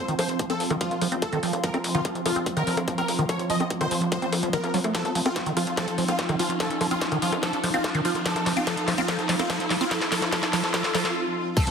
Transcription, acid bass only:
0.08 0.15 D#3 loud
0.19 0.28 F3 medium
0.39 0.46 F3 medium
0.50 0.53 C4 loud
0.70 0.77 D#3 loud
0.81 0.90 F3 medium
1.01 1.08 F3 medium
1.12 1.16 C4 loud
1.33 1.39 D#3 loud
1.43 1.52 F3 medium
1.64 1.70 F3 medium
1.74 1.78 C4 loud
1.95 2.01 D#3 loud
2.05 2.14 F3 medium
2.26 2.32 F3 medium
2.36 2.40 C4 loud
2.57 2.63 D#3 loud
2.67 2.76 F3 medium
2.88 2.94 F3 medium
2.98 3.02 C4 loud
3.19 3.25 D#3 loud
3.29 3.38 F3 medium
3.50 3.56 F3 medium
3.60 3.64 C4 loud
3.81 3.87 D#3 loud
3.91 4.00 F3 medium
4.12 4.18 F3 medium
4.22 4.26 C4 loud
4.43 4.49 F3 medium
4.53 4.57 D#3 loud
4.74 4.80 F#3 loud
4.84 4.94 A3 medium
4.95 5.04 F3 medium
5.15 5.21 F3 medium
5.26 5.29 C4 medium
5.46 5.52 D#3 loud
5.57 5.66 F3 medium
5.77 5.87 F3 medium
5.98 6.04 F3 medium
6.08 6.12 C4 loud
6.29 6.35 D#3 medium
6.39 6.49 F3 medium
6.60 6.69 F3 medium
6.81 6.87 F3 medium
6.91 6.95 C4 medium
7.12 7.18 D#3 loud
7.22 7.31 F3 medium
7.43 7.52 F3 medium
7.63 7.70 F3 medium
7.74 7.78 C4 loud
7.95 8.01 D#3 loud
8.05 8.14 F3 medium
8.26 8.35 F3 medium
8.46 8.52 F3 medium
8.57 8.60 C4 loud
8.67 8.76 F3 medium
8.88 8.94 F3 medium
8.98 9.02 C4 loud
9.08 9.18 F3 medium
9.29 9.35 F3 medium
9.39 9.43 C4 loud
9.50 9.59 F3 medium
9.70 9.77 F3 medium
9.81 9.85 C4 loud
9.91 10.00 F3 medium
10.12 10.21 F3 medium
10.33 10.42 F3 medium
10.53 10.62 F3 medium
10.74 10.83 F3 medium
10.95 11.04 F3 medium
11.57 11.66 F3 medium

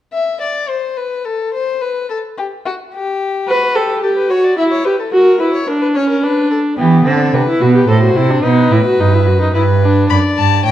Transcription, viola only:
3.48 3.77 B4 medium
3.75 4.02 A4 medium
4.03 4.32 G4 medium
4.31 4.58 F#4 medium
4.58 4.85 E4 medium
4.86 4.94 G4 medium
5.13 5.40 F#4 medium
5.40 5.68 E4 medium
5.68 5.97 D4 medium
5.96 6.24 C#4 medium
6.23 6.78 D4 medium
6.78 7.08 B3 medium
7.06 7.36 C4 medium
7.34 7.47 D4 medium
7.48 7.63 E4 medium
7.61 7.74 F#4 medium
7.75 7.88 G4 medium
7.88 8.02 A4 medium
8.03 8.18 F#4 medium
8.16 8.32 E4 medium
8.30 8.45 D4 medium
8.44 8.73 D#4 medium
8.72 8.85 E4 medium
8.86 9.01 F#4 medium
9.00 9.15 D#4 medium
9.14 9.29 E4 medium
9.27 9.40 F#4 medium
9.41 9.54 D#4 medium
9.54 9.62 E4 medium
9.82 10.10 D4 medium

